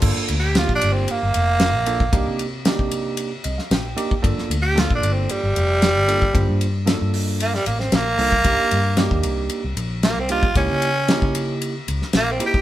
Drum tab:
CC |x---------------|----------------|----------------|----------------|
RD |--b-b-b-b-b-b-b-|b-b-b-b-b-b-b-b-|b-b-b-b-b-b-b-b-|b-b-b---b-b-b---|
HH |----------------|----------------|----------------|------o-------o-|
SD |----o-------o---|----o------oo---|-o--o-------o---|----o----o-oo---|
BD |o----o---------o|o----o---------o|o----o---------o|o--------------o|

CC |----------------|----------------|
RD |b-b-b-b-b-b-b-b-|b-b-b-b-b-b-b-b-|
HH |----------------|----------------|
SD |----o-------o---|----o------oo---|
BD |o----o---------o|o----o---------o|